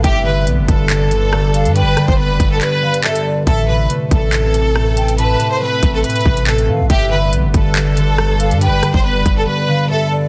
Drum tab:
HH |x-------x---x---x---x-------x-x-|x---x-------x---x-----x---x-----|x-------x---x---x---x-------x-x-|x---x-------x---xxxx--x---x-----|
CP |----------------x---------------|----------------x-------x-------|----------------x---------------|------------------------x-------|
SD |------------------------r-------|----r---------------------------|------------------------r-------|--------------------------------|
BD |o-----------o-------------------|------o-----o-------------------|o-----------o-------------------|------------o-------o-----------|

HH |x-------x---x---x---x-------x-x-|x---x-------x-------------------|
CP |----------------x---------------|--------------------------------|
SD |------------------------r-------|----r---------------------------|
BD |o-----------o-------------------|------o-----o-------------------|